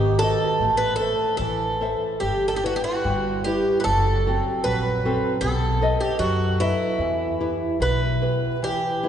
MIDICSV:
0, 0, Header, 1, 4, 480
1, 0, Start_track
1, 0, Key_signature, 1, "minor"
1, 0, Tempo, 790514
1, 368, Time_signature, 2, 2, 24, 8
1, 852, Tempo, 820793
1, 2292, Tempo, 783290
1, 4212, Tempo, 816327
1, 5439, End_track
2, 0, Start_track
2, 0, Title_t, "Nylon-string guitar"
2, 0, Program_c, 0, 24
2, 0, Note_on_c, 0, 51, 57
2, 135, Note_on_c, 0, 66, 47
2, 138, Note_on_c, 0, 71, 41
2, 142, Note_on_c, 0, 75, 50
2, 323, Note_off_c, 0, 66, 0
2, 325, Note_off_c, 0, 71, 0
2, 327, Note_off_c, 0, 75, 0
2, 357, Note_off_c, 0, 51, 0
2, 371, Note_on_c, 0, 57, 50
2, 607, Note_on_c, 0, 69, 43
2, 611, Note_on_c, 0, 72, 38
2, 614, Note_on_c, 0, 76, 44
2, 839, Note_off_c, 0, 57, 0
2, 856, Note_on_c, 0, 52, 52
2, 997, Note_off_c, 0, 69, 0
2, 998, Note_off_c, 0, 72, 0
2, 1000, Note_off_c, 0, 76, 0
2, 1089, Note_on_c, 0, 69, 36
2, 1091, Note_on_c, 0, 72, 35
2, 1096, Note_on_c, 0, 76, 43
2, 1283, Note_off_c, 0, 69, 0
2, 1285, Note_off_c, 0, 72, 0
2, 1286, Note_off_c, 0, 76, 0
2, 1321, Note_off_c, 0, 52, 0
2, 1327, Note_on_c, 0, 55, 45
2, 1572, Note_on_c, 0, 64, 36
2, 1576, Note_on_c, 0, 71, 48
2, 1799, Note_off_c, 0, 55, 0
2, 1811, Note_on_c, 0, 55, 55
2, 1958, Note_off_c, 0, 64, 0
2, 1960, Note_off_c, 0, 71, 0
2, 2057, Note_on_c, 0, 64, 41
2, 2057, Note_on_c, 0, 67, 36
2, 2060, Note_on_c, 0, 71, 46
2, 2245, Note_off_c, 0, 64, 0
2, 2246, Note_off_c, 0, 67, 0
2, 2247, Note_off_c, 0, 71, 0
2, 2275, Note_off_c, 0, 55, 0
2, 2293, Note_on_c, 0, 54, 47
2, 2539, Note_on_c, 0, 66, 44
2, 2539, Note_on_c, 0, 69, 42
2, 2544, Note_on_c, 0, 60, 46
2, 2762, Note_off_c, 0, 54, 0
2, 2780, Note_on_c, 0, 54, 58
2, 2919, Note_off_c, 0, 69, 0
2, 2920, Note_off_c, 0, 66, 0
2, 2923, Note_off_c, 0, 60, 0
2, 3018, Note_on_c, 0, 66, 44
2, 3021, Note_on_c, 0, 69, 40
2, 3023, Note_on_c, 0, 60, 49
2, 3205, Note_off_c, 0, 66, 0
2, 3206, Note_off_c, 0, 69, 0
2, 3208, Note_off_c, 0, 60, 0
2, 3237, Note_off_c, 0, 54, 0
2, 3257, Note_on_c, 0, 59, 51
2, 3486, Note_on_c, 0, 69, 50
2, 3491, Note_on_c, 0, 71, 39
2, 3492, Note_on_c, 0, 75, 52
2, 3714, Note_off_c, 0, 59, 0
2, 3729, Note_on_c, 0, 54, 59
2, 3871, Note_off_c, 0, 69, 0
2, 3872, Note_off_c, 0, 71, 0
2, 3874, Note_off_c, 0, 75, 0
2, 3967, Note_on_c, 0, 69, 45
2, 3969, Note_on_c, 0, 71, 40
2, 3974, Note_on_c, 0, 75, 46
2, 4163, Note_off_c, 0, 69, 0
2, 4163, Note_off_c, 0, 71, 0
2, 4167, Note_off_c, 0, 75, 0
2, 4199, Note_off_c, 0, 54, 0
2, 4217, Note_on_c, 0, 52, 43
2, 4451, Note_on_c, 0, 64, 40
2, 4451, Note_on_c, 0, 67, 40
2, 4455, Note_on_c, 0, 71, 43
2, 4675, Note_off_c, 0, 52, 0
2, 4686, Note_on_c, 0, 47, 45
2, 4832, Note_off_c, 0, 64, 0
2, 4833, Note_off_c, 0, 67, 0
2, 4835, Note_off_c, 0, 71, 0
2, 4926, Note_on_c, 0, 64, 35
2, 4930, Note_on_c, 0, 67, 32
2, 4932, Note_on_c, 0, 71, 43
2, 5120, Note_off_c, 0, 64, 0
2, 5123, Note_off_c, 0, 67, 0
2, 5124, Note_off_c, 0, 71, 0
2, 5155, Note_off_c, 0, 47, 0
2, 5167, Note_on_c, 0, 52, 41
2, 5408, Note_on_c, 0, 64, 45
2, 5411, Note_on_c, 0, 55, 41
2, 5415, Note_on_c, 0, 71, 47
2, 5439, Note_off_c, 0, 52, 0
2, 5439, Note_off_c, 0, 55, 0
2, 5439, Note_off_c, 0, 64, 0
2, 5439, Note_off_c, 0, 71, 0
2, 5439, End_track
3, 0, Start_track
3, 0, Title_t, "Twelve-string acoustic guitar"
3, 0, Program_c, 1, 25
3, 0, Note_on_c, 1, 67, 78
3, 112, Note_off_c, 1, 67, 0
3, 115, Note_on_c, 1, 69, 78
3, 454, Note_off_c, 1, 69, 0
3, 470, Note_on_c, 1, 71, 71
3, 579, Note_off_c, 1, 71, 0
3, 582, Note_on_c, 1, 69, 69
3, 825, Note_off_c, 1, 69, 0
3, 833, Note_on_c, 1, 69, 66
3, 1316, Note_off_c, 1, 69, 0
3, 1318, Note_on_c, 1, 67, 62
3, 1476, Note_off_c, 1, 67, 0
3, 1482, Note_on_c, 1, 69, 59
3, 1528, Note_off_c, 1, 69, 0
3, 1531, Note_on_c, 1, 67, 57
3, 1584, Note_off_c, 1, 67, 0
3, 1586, Note_on_c, 1, 66, 63
3, 1641, Note_off_c, 1, 66, 0
3, 1646, Note_on_c, 1, 67, 63
3, 1690, Note_off_c, 1, 67, 0
3, 1692, Note_on_c, 1, 66, 58
3, 2043, Note_off_c, 1, 66, 0
3, 2045, Note_on_c, 1, 67, 61
3, 2251, Note_off_c, 1, 67, 0
3, 2253, Note_on_c, 1, 71, 57
3, 2275, Note_off_c, 1, 71, 0
3, 2277, Note_on_c, 1, 69, 75
3, 2743, Note_off_c, 1, 69, 0
3, 2766, Note_on_c, 1, 71, 72
3, 3236, Note_off_c, 1, 71, 0
3, 3238, Note_on_c, 1, 69, 74
3, 3601, Note_off_c, 1, 69, 0
3, 3603, Note_on_c, 1, 67, 62
3, 3714, Note_off_c, 1, 67, 0
3, 3717, Note_on_c, 1, 66, 68
3, 3969, Note_on_c, 1, 64, 61
3, 3970, Note_off_c, 1, 66, 0
3, 4664, Note_off_c, 1, 64, 0
3, 4694, Note_on_c, 1, 71, 64
3, 5149, Note_off_c, 1, 71, 0
3, 5177, Note_on_c, 1, 67, 63
3, 5439, Note_off_c, 1, 67, 0
3, 5439, End_track
4, 0, Start_track
4, 0, Title_t, "Upright bass"
4, 0, Program_c, 2, 32
4, 0, Note_on_c, 2, 32, 88
4, 199, Note_off_c, 2, 32, 0
4, 364, Note_on_c, 2, 33, 75
4, 680, Note_off_c, 2, 33, 0
4, 844, Note_on_c, 2, 33, 68
4, 1160, Note_off_c, 2, 33, 0
4, 1328, Note_on_c, 2, 31, 73
4, 1644, Note_off_c, 2, 31, 0
4, 1812, Note_on_c, 2, 31, 71
4, 2123, Note_off_c, 2, 31, 0
4, 2288, Note_on_c, 2, 30, 77
4, 2603, Note_off_c, 2, 30, 0
4, 2772, Note_on_c, 2, 34, 89
4, 3081, Note_off_c, 2, 34, 0
4, 3242, Note_on_c, 2, 35, 83
4, 3553, Note_off_c, 2, 35, 0
4, 3718, Note_on_c, 2, 42, 82
4, 4037, Note_off_c, 2, 42, 0
4, 4204, Note_on_c, 2, 40, 75
4, 4515, Note_off_c, 2, 40, 0
4, 4683, Note_on_c, 2, 35, 72
4, 4998, Note_off_c, 2, 35, 0
4, 5439, End_track
0, 0, End_of_file